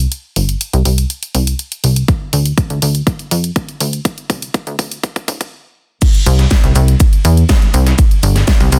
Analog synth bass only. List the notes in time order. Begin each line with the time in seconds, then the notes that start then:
0.36 G1
0.73 C2
0.85 C2
1.35 C2
1.84 C2
2.33 D2
2.70 D2
2.82 D2
3.31 F2
3.80 D2
4.30 C2
4.67 D2
4.79 D2
5.28 D1
6.26 C2
6.64 C2
6.76 C2
7.25 E2
7.74 C2
8.23 G1
8.60 C2
8.72 C2